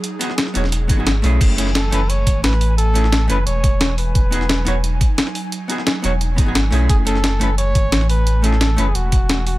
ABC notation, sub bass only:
X:1
M:4/4
L:1/8
Q:1/4=175
K:F#dor
V:1 name="Sub bass" clef=bass
z3 E,,,2 G,,,2 B,,, | F,,,3 F,,,2 G,,, A,,,2- | A,,,3 F,,, E,,,4 | E,,,3 E,,,2 z3 |
z3 E,,,2 G,,,2 B,,, | F,,,3 F,,,2 G,,, A,,,2- | A,,,3 F,,, E,,,4 |]